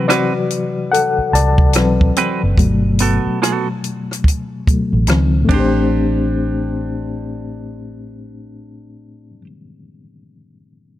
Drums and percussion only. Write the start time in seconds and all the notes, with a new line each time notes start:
0.10 cross-stick, closed hi-hat
0.50 closed hi-hat
0.94 closed hi-hat
1.35 cross-stick, closed hi-hat
1.58 kick
1.73 cross-stick, closed hi-hat
2.01 kick
2.16 closed hi-hat
2.58 kick, closed hi-hat
2.99 closed hi-hat
3.43 cross-stick, closed hi-hat
3.84 closed hi-hat
4.11 cross-stick, closed hi-hat
4.24 kick, closed hi-hat
4.67 kick, closed hi-hat
5.07 cross-stick, closed hi-hat
5.49 kick, ride